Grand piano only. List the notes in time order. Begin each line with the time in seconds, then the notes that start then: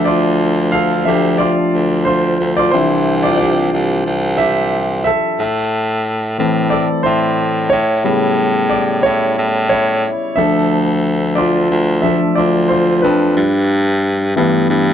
Already playing: F3 A3 D4 A4 E5
0.05 F4 D5
0.72 A4 F5
1.05 F3 A3 D4 G4 E5
1.38 F4 D5
2.05 F4 C5
2.57 F4 D5
2.71 E3 C4 D4 E4 C5
3.23 F4 D5
3.38 G4 D5
4.38 G4 E5
5.04 A4 E5
6.38 E3 A3 C4
6.70 A4 D5
7.03 E4 C5
7.70 E4 C#5
8.04 C#3 G3 B3
8.69 G4 D5
9.03 E4 C#5
9.69 E4 C#5
10.36 F3 A3 D4 A4 E5
11.35 F4 D5
12.02 F3 A3 D4 A4 E5
12.35 F4 D5
12.69 F4 C5
13.02 D4 B4
14.36 E3 A3 B3